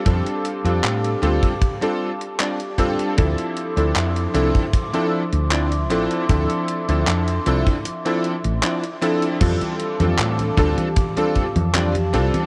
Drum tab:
CC |----------------|----------------|----------------|x---------------|
HH |xxxxxxxxxx-xxxxx|xxxxxxxxxx-xxxxx|xxxxxxxxxxxxxxxx|xxxxxxxxxxxxxxxx|
CP |----x-------x---|----x-------x---|----x-------x---|----x-------x---|
CG |----------------|----------------|----------------|oo-ooo-ooo-ooo-o|
BD |o------oo-----o-|o------oo-------|o------o--------|o-----o-o-o-----|